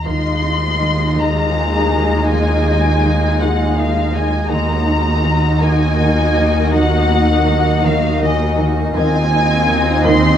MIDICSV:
0, 0, Header, 1, 10, 480
1, 0, Start_track
1, 0, Tempo, 740741
1, 49, Time_signature, 3, 2, 24, 8
1, 6723, End_track
2, 0, Start_track
2, 0, Title_t, "Vibraphone"
2, 0, Program_c, 0, 11
2, 0, Control_c, 0, 64, 127
2, 62, Control_c, 0, 64, 0
2, 153, Control_c, 0, 64, 127
2, 991, Note_on_c, 0, 68, 26
2, 995, Note_on_c, 0, 80, 36
2, 2414, Note_off_c, 0, 68, 0
2, 2416, Note_off_c, 0, 80, 0
2, 2938, Note_on_c, 0, 84, 39
2, 2941, Control_c, 0, 64, 0
2, 3062, Control_c, 0, 64, 127
2, 4348, Note_off_c, 0, 84, 0
2, 5350, Note_on_c, 0, 80, 44
2, 5820, Control_c, 0, 64, 0
2, 5940, Control_c, 0, 64, 127
2, 6723, Note_off_c, 0, 80, 0
2, 6723, End_track
3, 0, Start_track
3, 0, Title_t, "Violin section"
3, 0, Program_c, 1, 48
3, 54, Note_on_c, 1, 84, 62
3, 772, Note_off_c, 1, 84, 0
3, 773, Note_on_c, 1, 82, 58
3, 1482, Note_on_c, 1, 80, 66
3, 1491, Note_off_c, 1, 82, 0
3, 2191, Note_off_c, 1, 80, 0
3, 2211, Note_on_c, 1, 78, 51
3, 2447, Note_on_c, 1, 77, 54
3, 2450, Note_off_c, 1, 78, 0
3, 2686, Note_on_c, 1, 80, 55
3, 2688, Note_off_c, 1, 77, 0
3, 2922, Note_on_c, 1, 82, 69
3, 2928, Note_off_c, 1, 80, 0
3, 3631, Note_off_c, 1, 82, 0
3, 3632, Note_on_c, 1, 80, 66
3, 4360, Note_off_c, 1, 80, 0
3, 4366, Note_on_c, 1, 78, 73
3, 5073, Note_off_c, 1, 78, 0
3, 5087, Note_on_c, 1, 77, 66
3, 5328, Note_off_c, 1, 77, 0
3, 5332, Note_on_c, 1, 75, 61
3, 5566, Note_off_c, 1, 75, 0
3, 5807, Note_on_c, 1, 80, 85
3, 6502, Note_off_c, 1, 80, 0
3, 6531, Note_on_c, 1, 84, 90
3, 6723, Note_off_c, 1, 84, 0
3, 6723, End_track
4, 0, Start_track
4, 0, Title_t, "Ambient pad"
4, 0, Program_c, 2, 92
4, 61, Note_on_c, 2, 68, 49
4, 63, Note_on_c, 2, 75, 49
4, 66, Note_on_c, 2, 80, 47
4, 2909, Note_off_c, 2, 68, 0
4, 2910, Note_off_c, 2, 75, 0
4, 2911, Note_off_c, 2, 80, 0
4, 2929, Note_on_c, 2, 70, 45
4, 2930, Note_on_c, 2, 66, 51
4, 2930, Note_on_c, 2, 75, 50
4, 5784, Note_off_c, 2, 75, 0
4, 5809, Note_off_c, 2, 70, 0
4, 5810, Note_off_c, 2, 66, 0
4, 5815, Note_on_c, 2, 80, 53
4, 5819, Note_on_c, 2, 72, 52
4, 5819, Note_on_c, 2, 75, 53
4, 6723, Note_off_c, 2, 72, 0
4, 6723, Note_off_c, 2, 75, 0
4, 6723, Note_off_c, 2, 80, 0
4, 6723, End_track
5, 0, Start_track
5, 0, Title_t, "Violin section"
5, 0, Program_c, 3, 48
5, 44, Note_on_c, 3, 65, 39
5, 45, Note_on_c, 3, 75, 36
5, 2901, Note_off_c, 3, 65, 0
5, 2901, Note_off_c, 3, 75, 0
5, 2921, Note_on_c, 3, 66, 42
5, 2923, Note_on_c, 3, 75, 42
5, 5779, Note_off_c, 3, 66, 0
5, 5780, Note_off_c, 3, 75, 0
5, 5796, Note_on_c, 3, 75, 51
5, 5799, Note_on_c, 3, 65, 53
5, 6723, Note_off_c, 3, 65, 0
5, 6723, Note_off_c, 3, 75, 0
5, 6723, End_track
6, 0, Start_track
6, 0, Title_t, "Viola section"
6, 0, Program_c, 4, 48
6, 55, Note_on_c, 4, 63, 41
6, 56, Note_on_c, 4, 56, 39
6, 2906, Note_off_c, 4, 56, 0
6, 2906, Note_off_c, 4, 63, 0
6, 2922, Note_on_c, 4, 63, 42
6, 2925, Note_on_c, 4, 58, 42
6, 5780, Note_off_c, 4, 63, 0
6, 5781, Note_off_c, 4, 58, 0
6, 5805, Note_on_c, 4, 60, 56
6, 5807, Note_on_c, 4, 63, 54
6, 6723, Note_off_c, 4, 60, 0
6, 6723, Note_off_c, 4, 63, 0
6, 6723, End_track
7, 0, Start_track
7, 0, Title_t, "Cello section"
7, 0, Program_c, 5, 48
7, 53, Note_on_c, 5, 51, 47
7, 196, Note_off_c, 5, 51, 0
7, 284, Note_on_c, 5, 63, 31
7, 430, Note_off_c, 5, 63, 0
7, 531, Note_on_c, 5, 51, 33
7, 674, Note_off_c, 5, 51, 0
7, 768, Note_on_c, 5, 51, 47
7, 912, Note_off_c, 5, 51, 0
7, 1007, Note_on_c, 5, 51, 29
7, 1152, Note_off_c, 5, 51, 0
7, 1246, Note_on_c, 5, 51, 35
7, 1391, Note_off_c, 5, 51, 0
7, 1489, Note_on_c, 5, 51, 47
7, 1633, Note_off_c, 5, 51, 0
7, 1729, Note_on_c, 5, 63, 34
7, 1873, Note_off_c, 5, 63, 0
7, 1969, Note_on_c, 5, 51, 34
7, 2113, Note_off_c, 5, 51, 0
7, 2216, Note_on_c, 5, 51, 52
7, 2358, Note_off_c, 5, 51, 0
7, 2450, Note_on_c, 5, 51, 33
7, 2594, Note_off_c, 5, 51, 0
7, 2698, Note_on_c, 5, 51, 39
7, 2840, Note_off_c, 5, 51, 0
7, 2934, Note_on_c, 5, 51, 50
7, 3077, Note_off_c, 5, 51, 0
7, 3171, Note_on_c, 5, 63, 35
7, 3314, Note_off_c, 5, 63, 0
7, 3410, Note_on_c, 5, 51, 37
7, 3554, Note_off_c, 5, 51, 0
7, 3650, Note_on_c, 5, 51, 52
7, 3794, Note_off_c, 5, 51, 0
7, 3893, Note_on_c, 5, 51, 37
7, 4036, Note_off_c, 5, 51, 0
7, 4137, Note_on_c, 5, 51, 42
7, 4279, Note_off_c, 5, 51, 0
7, 4369, Note_on_c, 5, 51, 55
7, 4513, Note_off_c, 5, 51, 0
7, 4613, Note_on_c, 5, 63, 40
7, 4756, Note_off_c, 5, 63, 0
7, 4847, Note_on_c, 5, 51, 41
7, 4992, Note_off_c, 5, 51, 0
7, 5089, Note_on_c, 5, 51, 61
7, 5233, Note_off_c, 5, 51, 0
7, 5328, Note_on_c, 5, 51, 42
7, 5472, Note_off_c, 5, 51, 0
7, 5569, Note_on_c, 5, 51, 50
7, 5713, Note_off_c, 5, 51, 0
7, 5807, Note_on_c, 5, 51, 66
7, 5952, Note_off_c, 5, 51, 0
7, 6053, Note_on_c, 5, 63, 45
7, 6196, Note_off_c, 5, 63, 0
7, 6292, Note_on_c, 5, 51, 44
7, 6435, Note_off_c, 5, 51, 0
7, 6528, Note_on_c, 5, 51, 73
7, 6673, Note_off_c, 5, 51, 0
7, 6723, End_track
8, 0, Start_track
8, 0, Title_t, "Cello section"
8, 0, Program_c, 6, 48
8, 53, Note_on_c, 6, 39, 44
8, 2905, Note_off_c, 6, 39, 0
8, 2928, Note_on_c, 6, 39, 48
8, 5783, Note_off_c, 6, 39, 0
8, 5809, Note_on_c, 6, 39, 61
8, 6723, Note_off_c, 6, 39, 0
8, 6723, End_track
9, 0, Start_track
9, 0, Title_t, "Double bass section"
9, 0, Program_c, 7, 48
9, 53, Note_on_c, 7, 39, 38
9, 2905, Note_off_c, 7, 39, 0
9, 2932, Note_on_c, 7, 39, 42
9, 5785, Note_off_c, 7, 39, 0
9, 5810, Note_on_c, 7, 39, 53
9, 6723, Note_off_c, 7, 39, 0
9, 6723, End_track
10, 0, Start_track
10, 0, Title_t, "Sub bass"
10, 0, Program_c, 8, 38
10, 59, Note_on_c, 8, 39, 63
10, 2908, Note_off_c, 8, 39, 0
10, 2932, Note_on_c, 8, 39, 61
10, 5785, Note_off_c, 8, 39, 0
10, 5809, Note_on_c, 8, 39, 66
10, 6723, Note_off_c, 8, 39, 0
10, 6723, End_track
0, 0, End_of_file